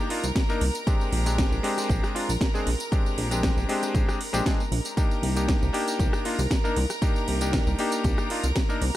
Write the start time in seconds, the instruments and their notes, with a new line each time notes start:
Already playing: string section A#4 A#5
0.09 electric grand piano A#3 D4 D#4 F4, open hi-hat
0.24 analog synth bass C2, closed hi-hat, tambourine
0.36 kick, snare, closed hi-hat, tambourine
0.49 electric grand piano A#3 D4 D#4 A#4, tambourine
0.61 analog synth bass C2, open hi-hat
0.75 closed hi-hat, tambourine
0.87 electric grand piano G#3 C4 D4 G4, kick, closed hi-hat, tambourine
1.01 tambourine
1.12 analog synth bass A#1, open hi-hat
1.26 electric grand piano G#3 C4 D4 G4, closed hi-hat, tambourine
1.38 kick, snare, closed hi-hat, tambourine
1.51 analog synth bass A#1, tambourine
1.63 electric grand piano G#3 C4 D4 G4, open hi-hat
1.78 cross-stick, closed hi-hat, tambourine
1.89 analog synth bass A#1, kick, closed hi-hat, tambourine
2.04 cross-stick, tambourine
2.14 electric grand piano G#3 C4 D4 F4, open hi-hat
2.29 analog synth bass A#1, open hi-hat, tambourine
2.41 kick, snare, closed hi-hat, tambourine
2.54 electric grand piano G#3 C4 D4 G#4, tambourine
2.67 analog synth bass A#1, open hi-hat
2.80 closed hi-hat, tambourine
2.92 electric grand piano G#3 C4 D4 G4, kick, closed hi-hat, tambourine
3.06 tambourine
3.18 analog synth bass A#1, open hi-hat
3.31 electric grand piano G#3 C4 D4 G4, closed hi-hat, tambourine
3.43 kick, snare, closed hi-hat, tambourine
3.57 analog synth bass A#1, tambourine
3.69 electric grand piano G#3 C4 D4 G4, open hi-hat
3.83 cross-stick, closed hi-hat, tambourine
3.95 analog synth bass A#1, kick, closed hi-hat, tambourine
4.09 cross-stick, tambourine
4.21 open hi-hat
4.33 analog synth bass A#1, electric grand piano G#3 C4 D4 G4, closed hi-hat, tambourine
4.46 electric grand piano C4 D4 G#4, kick, snare, closed hi-hat, tambourine
4.60 tambourine
4.72 analog synth bass A#1, open hi-hat
4.85 closed hi-hat, tambourine
4.97 electric grand piano A#3 D4 D#4 G4, string section A#4 A#5, kick, closed hi-hat, tambourine
5.11 tambourine
5.23 analog synth bass C2, open hi-hat
5.36 electric grand piano A#3 D4 D#4 G4, closed hi-hat, tambourine
5.48 kick, snare, closed hi-hat, tambourine
5.62 analog synth bass C2, tambourine
5.73 electric grand piano A#3 D4 D#4 G4, open hi-hat
5.88 closed hi-hat, tambourine
5.99 analog synth bass C2, kick, closed hi-hat, tambourine
6.13 cross-stick, tambourine
6.25 electric grand piano A#3 D4 D#4 F4, open hi-hat
6.39 analog synth bass C2, open hi-hat, tambourine
6.51 kick, snare, closed hi-hat, tambourine
6.64 electric grand piano A#3 D4 D#4 A#4, tambourine
6.76 analog synth bass C2, open hi-hat
6.90 cross-stick, closed hi-hat, tambourine
7.02 electric grand piano A#3 D4 D#4 G4, kick, closed hi-hat, tambourine
7.16 tambourine
7.28 analog synth bass C2, open hi-hat
7.41 electric grand piano A#3 D4 D#4 G4, closed hi-hat, tambourine
7.53 kick, snare, closed hi-hat, tambourine
7.67 analog synth bass C2, tambourine
7.79 electric grand piano A#3 D4 D#4 G4, open hi-hat
7.92 closed hi-hat, tambourine
8.04 analog synth bass C2, kick, closed hi-hat, tambourine
8.18 cross-stick, tambourine
8.30 electric grand piano A#3 D4 D#4 F4, open hi-hat
8.44 analog synth bass C2, closed hi-hat, tambourine
8.56 kick, snare, closed hi-hat, tambourine
8.69 electric grand piano A#3 D4 D#4 A#4, tambourine
8.81 analog synth bass C2, open hi-hat